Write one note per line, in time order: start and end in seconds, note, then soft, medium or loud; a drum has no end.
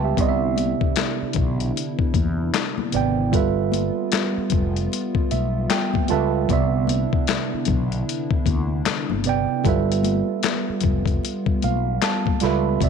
0.00 0.13 C#2 medium
0.00 0.15 G3 medium
0.00 0.14 B3 medium
0.00 0.14 F4 medium
0.00 0.05 G4 soft
0.00 0.19 B4 medium
0.00 0.04 E5 medium
0.00 0.19 G5 medium
0.00 0.19 A5 medium
0.04 0.41 G4 medium
0.04 0.27 E5 medium
0.17 0.73 C2 loud
0.17 1.39 C3 medium
0.17 3.31 D3 medium
0.17 9.61 B3 medium
0.17 1.39 B3 medium
0.17 3.31 D4 medium
0.17 3.30 E4 medium
0.17 1.40 D5 medium
0.17 kick loud
0.17 closed hi-hat medium
0.17 muted conga soft
0.22 0.28 D#5 medium
0.29 1.44 E5 medium
0.56 closed hi-hat medium
0.56 high conga medium
0.81 kick loud
0.96 snare loud
0.96 clap medium
0.96 closed hi-hat medium
0.96 muted conga soft
1.22 muted fretless electric bass stroke medium
1.33 1.71 B1 medium
1.33 kick loud
1.33 closed hi-hat medium
1.33 low conga medium
1.60 closed hi-hat soft
1.76 closed hi-hat medium
1.76 muted conga soft
1.99 kick loud
2.14 2.49 E2 medium
2.14 kick loud
2.14 closed hi-hat medium
2.14 muted conga soft
2.14 high conga medium
2.54 snare loud
2.54 clap loud
2.54 closed hi-hat medium
2.78 high conga medium
2.78 low conga medium
2.92 3.34 G#1 medium
2.92 3.25 C3 medium
2.92 3.26 B3 medium
2.92 3.26 D5 medium
2.92 closed hi-hat medium
2.96 3.27 G5 medium
3.32 3.89 G1 loud
3.32 4.54 G3 medium
3.32 6.46 G3 medium
3.32 4.54 F4 medium
3.32 6.46 F4 medium
3.32 4.55 A4 medium
3.32 4.55 B4 medium
3.32 kick loud
3.32 closed hi-hat medium
3.36 4.56 E5 medium
3.72 closed hi-hat medium
3.72 high conga medium
4.12 snare loud
4.12 clap medium
4.12 closed hi-hat medium
4.38 muted fretless electric bass stroke soft
4.50 4.87 F1 medium
4.50 kick medium
4.50 closed hi-hat medium
4.50 low conga medium
4.76 closed hi-hat soft
4.92 closed hi-hat medium
4.92 muted conga soft
5.15 kick loud
5.31 5.66 B1 medium
5.31 5.68 E5 medium
5.31 closed hi-hat medium
5.31 high conga medium
5.70 6.07 G5 medium
5.70 snare loud
5.70 clap medium
5.70 closed hi-hat medium
5.70 muted conga soft
5.94 kick medium
5.94 high conga medium
5.94 low conga medium
6.08 6.45 C#2 medium
6.08 6.41 G3 medium
6.08 6.42 F4 medium
6.08 6.42 A4 medium
6.08 6.43 B4 medium
6.08 6.47 A5 medium
6.08 closed hi-hat medium
6.08 muted conga soft
6.13 6.43 E5 medium
6.48 7.05 C2 loud
6.48 7.70 C3 medium
6.48 9.62 D3 medium
6.48 7.70 B3 medium
6.48 9.62 D4 medium
6.48 9.62 E4 medium
6.48 7.71 D5 medium
6.48 kick loud
6.48 closed hi-hat medium
6.53 7.72 E5 loud
6.87 closed hi-hat medium
6.87 muted conga soft
6.87 high conga medium
7.13 kick loud
7.27 snare loud
7.27 clap medium
7.27 closed hi-hat medium
7.54 muted fretless electric bass stroke soft
7.65 8.03 B1 medium
7.65 kick medium
7.65 closed hi-hat medium
7.65 muted conga soft
7.65 low conga medium
7.92 closed hi-hat soft
8.09 closed hi-hat medium
8.31 kick loud
8.46 8.81 D2 medium
8.46 kick loud
8.46 closed hi-hat medium
8.46 muted conga soft
8.46 high conga medium
8.86 muted fretless electric bass stroke soft
8.86 snare loud
8.86 clap medium
8.86 closed hi-hat medium
9.10 9.45 G1 medium
9.10 high conga medium
9.10 low conga medium
9.24 9.57 C3 medium
9.24 9.58 B3 medium
9.24 9.58 D5 medium
9.24 closed hi-hat medium
9.24 muted conga soft
9.29 9.59 G5 loud
9.64 10.21 G1 loud
9.64 10.86 G3 medium
9.64 12.77 G3 medium
9.64 12.77 B3 medium
9.64 12.77 F4 medium
9.64 10.86 F4 medium
9.64 10.87 A4 medium
9.64 10.87 B4 medium
9.64 kick loud
9.64 closed hi-hat medium
9.64 low conga medium
9.69 10.88 E5 medium
9.92 closed hi-hat medium
10.03 closed hi-hat medium
10.03 muted conga soft
10.03 high conga medium
10.43 snare loud
10.43 clap medium
10.43 closed hi-hat medium
10.70 muted fretless electric bass stroke soft
10.81 11.18 F1 medium
10.81 kick medium
10.81 closed hi-hat medium
10.81 low conga medium
11.06 kick medium
11.06 closed hi-hat soft
11.23 closed hi-hat medium
11.23 muted conga soft
11.46 kick loud
11.62 11.98 B1 medium
11.62 12.00 F5 medium
11.62 closed hi-hat medium
11.62 muted conga soft
11.62 high conga medium
12.02 12.40 A5 medium
12.02 snare loud
12.02 clap medium
12.02 closed hi-hat medium
12.02 muted conga soft
12.26 kick medium
12.26 high conga medium
12.26 low conga medium
12.40 12.77 C#2 medium
12.40 12.73 G3 medium
12.40 12.74 F4 medium
12.40 12.74 A4 medium
12.40 12.79 B5 medium
12.40 snare soft
12.40 closed hi-hat medium
12.40 muted conga soft
12.45 12.75 B4 medium
12.45 12.76 E5 medium
12.80 12.89 C2 loud
12.80 12.89 C3 medium
12.80 12.89 D3 medium
12.80 12.89 B3 medium
12.80 12.89 D4 medium
12.80 12.89 E4 medium
12.80 12.89 D5 medium
12.80 kick loud
12.80 closed hi-hat medium
12.80 muted conga soft
12.84 12.89 E5 medium